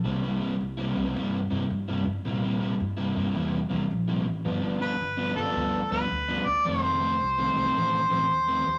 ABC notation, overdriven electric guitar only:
X:1
M:4/4
L:1/16
Q:"Swing" 1/4=109
K:Cmix
V:1 name="Overdriven electric guitar" clef=bass
[C,G,B,E] [C,G,B,E] [C,G,B,E] z2 [C,G,B,E] [C,G,B,E] [C,G,B,E] [C,G,B,E] z [C,G,B,E] z2 [C,G,B,E] z2 | [C,G,B,E] [C,G,B,E] [C,G,B,E] z2 [C,G,B,E] [C,G,B,E] [C,G,B,E] [C,G,B,E] z [C,G,B,E] z2 [C,G,B,E] z2 | [G,,F,=B,D] [G,,F,B,D] [G,,F,B,D] z2 [G,,F,B,D] [G,,F,B,D] [G,,F,B,D] [G,,F,B,D] z [G,,F,B,D] z2 [G,,F,B,D] z2 | [F,,_E,A,C] [F,,E,A,C] [F,,E,A,C] z2 [F,,E,A,C] [F,,E,A,C] [F,,E,A,C] [F,,E,A,C] z [F,,E,A,C] z2 [F,,E,A,C] z2 |]